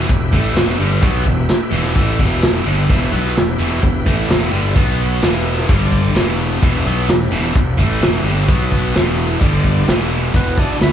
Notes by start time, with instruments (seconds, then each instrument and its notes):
Already playing: tonewheel organ G4 B4 E5
0.09 fingered electric bass E1, distorted electric guitar E2 B2, kick, closed hi-hat
0.32 fingered electric bass A1, distorted electric guitar A2 E3 A3, kick
0.53 fingered electric bass E1, distorted electric guitar E2 B2 E3, snare, closed hi-hat
0.79 fingered electric bass G1, distorted electric guitar G2 D3 G3
1.01 fingered electric bass B1, distorted electric guitar B2 F#3 B3, kick, closed hi-hat
1.26 fingered electric bass E1, distorted electric guitar E2 B2, kick
1.49 snare, closed hi-hat
1.71 fingered electric bass E1, distorted electric guitar E2 B2 E3
1.84 snare
1.95 fingered electric bass A1, distorted electric guitar A2 E3 A3, kick, closed hi-hat
2.19 fingered electric bass E1, distorted electric guitar E2 B2 E3, kick
2.42 snare, closed hi-hat
2.65 fingered electric bass G1, distorted electric guitar G2 D3 G3
2.89 fingered electric bass E1, distorted electric guitar E2 B2 E3, tonewheel organ E4 G4 B4, kick, closed hi-hat
3.11 fingered electric bass B1, distorted electric guitar B2 F#3 B3
3.35 fingered electric bass E1, distorted electric guitar E2 B2, snare, closed hi-hat
3.58 fingered electric bass E1, distorted electric guitar E2 B2 E3
3.82 fingered electric bass E1, distorted electric guitar E2 B2, kick, closed hi-hat
4.06 fingered electric bass A1, distorted electric guitar A2 E3 A3, kick
4.29 fingered electric bass E1, distorted electric guitar E2 B2 E3, snare, closed hi-hat
4.51 fingered electric bass G1, distorted electric guitar G2 D3 G3
4.75 fingered electric bass B1, distorted electric guitar B2 F#3 B3, tonewheel organ B3 F#4 B4, kick, closed hi-hat
5.21 fingered electric bass E1, distorted electric guitar E2 B2 E3, tonewheel organ E4 G4 B4, snare, closed hi-hat
5.57 snare
5.68 fingered electric bass G1, distorted electric guitar G2 D3 G3, tonewheel organ D4 G4 D5, kick, closed hi-hat
5.92 kick
6.14 fingered electric bass E1, distorted electric guitar E2 B2 E3, tonewheel organ E4 G4 B4, snare, closed hi-hat
6.62 fingered electric bass E1, distorted electric guitar E2 B2 E3, kick, closed hi-hat
6.86 fingered electric bass B1, distorted electric guitar B2 F#3 B3
7.07 fingered electric bass E1, distorted electric guitar E2 B2, snare, closed hi-hat
7.22 snare
7.31 fingered electric bass E1, distorted electric guitar E2 B2 E3
7.55 fingered electric bass E1, distorted electric guitar E2 B2, kick, closed hi-hat
7.77 fingered electric bass A1, distorted electric guitar A2 E3 A3, kick
8.01 fingered electric bass E1, distorted electric guitar E2 B2 E3, snare, closed hi-hat
8.24 fingered electric bass G1, distorted electric guitar G2 D3 G3
8.46 fingered electric bass B1, distorted electric guitar B2 F#3 B3, tonewheel organ B3 F#4 B4, kick, closed hi-hat
8.72 kick
8.94 fingered electric bass E1, distorted electric guitar E2 B2 E3, tonewheel organ E4 G4 B4, snare, closed hi-hat
9.40 fingered electric bass G1, distorted electric guitar G2 D3 G3, tonewheel organ D4 G4 D5, kick, closed hi-hat
9.64 kick
9.86 fingered electric bass E1, distorted electric guitar E2 B2 E3, tonewheel organ E4 G4 B4, snare, closed hi-hat
10.34 fingered electric bass E1, distorted electric guitar E2 B2 E3, tonewheel organ B3, kick, closed hi-hat
10.57 distorted electric guitar E2 B2 E3, tonewheel organ D4, kick, closed hi-hat
10.80 fingered electric bass D2, distorted electric guitar E2 B2 E3, tonewheel organ E4, snare, closed hi-hat